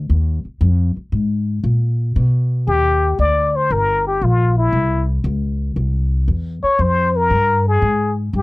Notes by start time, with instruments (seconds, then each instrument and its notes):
0.10 upright bass D#2
0.45 muted upright bass stroke
0.61 upright bass F2
0.97 muted upright bass stroke
1.12 upright bass G#2
1.64 upright bass A#2
2.16 upright bass B2
2.67 upright bass D#2, muted trumpet G4
3.19 upright bass D2, muted trumpet D5
3.56 muted trumpet C5
3.70 upright bass G1, muted trumpet A#4
4.07 muted trumpet G4
4.22 upright bass A#1, muted trumpet F4
4.58 muted trumpet E4
4.73 upright bass C2
5.24 upright bass C#2
5.76 upright bass C2
6.28 upright bass E2
6.63 muted trumpet C#5, muted upright bass stroke
6.79 upright bass F2, muted trumpet C5
7.16 muted trumpet A#4
7.30 upright bass G2
7.68 muted trumpet G#4
7.82 upright bass G#2
8.33 upright bass G2, muted trumpet G4